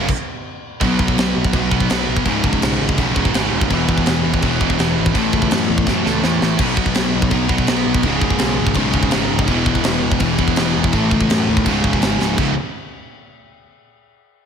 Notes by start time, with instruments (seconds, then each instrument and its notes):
0.00 picked electric bass F#1, distorted electric guitar C#3
0.09 kick, crash
0.81 picked electric bass B1, distorted electric guitar B2 F#3, kick, crash
0.85 distorted electric guitar B3
0.99 picked electric bass B1, kick
1.08 kick
1.17 picked electric bass B1, snare, crash
1.36 picked electric bass B1
1.45 kick
1.53 picked electric bass B1, distorted electric guitar B2 F#3 B3, kick, crash
1.70 picked electric bass B1, distorted electric guitar F#3 B3, kick
1.75 distorted electric guitar B2
1.80 kick
1.88 picked electric bass B1, distorted electric guitar B2 F#3 B3, snare, crash
2.08 picked electric bass B1
2.16 kick
2.25 picked electric bass C#1, distorted electric guitar C#2 G#2 C#3, kick, crash
2.44 picked electric bass F#1, kick
2.53 kick
2.62 picked electric bass B1, snare, crash
2.81 picked electric bass G#1
2.89 kick
2.97 picked electric bass B1, distorted electric guitar C#2 G#2 C#3, kick, crash
3.15 picked electric bass E1, distorted electric guitar C#2 G#2 C#3, kick
3.25 kick
3.34 picked electric bass G#1, distorted electric guitar C#2 G#2 C#3, snare, crash
3.53 picked electric bass D#1
3.61 kick
3.69 picked electric bass E1, distorted electric guitar E2 B2, kick, crash
3.73 distorted electric guitar E3
3.89 picked electric bass E1, kick
3.98 kick
4.06 picked electric bass E1, snare, crash
4.25 picked electric bass E1
4.34 kick
4.42 picked electric bass E1, distorted electric guitar E2 B2 E3, kick, crash
4.60 picked electric bass E1, distorted electric guitar E2 B2 E3, kick
4.70 kick
4.78 picked electric bass E1, distorted electric guitar E2 B2 E3, snare, crash
4.98 picked electric bass G#1
5.06 kick
5.13 picked electric bass A1, distorted electric guitar A2 E3, kick, crash
5.18 distorted electric guitar A3
5.33 picked electric bass C#2, kick
5.42 kick
5.51 picked electric bass F#2, snare, crash
5.70 picked electric bass E2
5.78 kick
5.86 picked electric bass F#2, distorted electric guitar A2 E3 A3, kick, snare
6.04 picked electric bass C#2, distorted electric guitar E3 A3, snare
6.08 distorted electric guitar A2
6.22 picked electric bass E2, distorted electric guitar A2 E3 A3, snare
6.42 picked electric bass A1, snare
6.58 picked electric bass B1, distorted electric guitar B2 F#3, kick, crash
6.62 distorted electric guitar B3
6.77 picked electric bass B1, kick
6.86 kick
6.95 picked electric bass B1, snare, crash
7.15 picked electric bass B1
7.22 kick
7.31 picked electric bass B1, distorted electric guitar B2 F#3 B3, kick, crash
7.49 picked electric bass B1, distorted electric guitar B2 F#3 B3, kick
7.58 kick
7.67 picked electric bass B1, distorted electric guitar B2 F#3 B3, snare, crash
7.86 picked electric bass B1
7.94 kick
8.03 picked electric bass C#1, distorted electric guitar C#2 G#2, kick, crash
8.07 distorted electric guitar C#3
8.21 picked electric bass F#1, kick
8.30 kick
8.39 picked electric bass B1, snare, crash
8.59 picked electric bass G#1
8.67 kick
8.74 picked electric bass B1, distorted electric guitar C#2 G#2, kick, crash
8.80 distorted electric guitar C#3
8.93 picked electric bass E1, distorted electric guitar G#2 C#3, kick
8.97 distorted electric guitar C#2
9.03 kick
9.10 picked electric bass G#1, distorted electric guitar C#2 G#2 C#3, snare, crash
9.32 picked electric bass C#1
9.39 kick
9.47 picked electric bass E1, distorted electric guitar E2 B2 E3, kick, crash
9.66 picked electric bass E1, kick
9.75 kick
9.84 picked electric bass E1, snare, crash
10.04 picked electric bass E1
10.12 kick
10.20 picked electric bass E1, distorted electric guitar E2 B2 E3, kick, crash
10.39 picked electric bass E1, distorted electric guitar B2 E3, kick
10.43 distorted electric guitar E2
10.48 kick
10.56 picked electric bass E1, distorted electric guitar E2 B2, snare, crash
10.61 distorted electric guitar E3
10.76 picked electric bass E1
10.84 kick
10.93 picked electric bass A1, distorted electric guitar A2 E3, kick, crash
10.97 distorted electric guitar A3
11.11 picked electric bass C#2, kick
11.21 kick
11.30 picked electric bass F#2, snare, crash
11.49 picked electric bass D#2
11.57 kick
11.65 picked electric bass C#1, distorted electric guitar C#2 G#2, kick, crash
11.69 distorted electric guitar C#3
11.84 picked electric bass E1, kick
11.93 kick
12.02 picked electric bass G#1, snare, crash
12.20 picked electric bass C#1, snare
12.37 picked electric bass C#1, distorted electric guitar C#2 G#2 C#3, kick, crash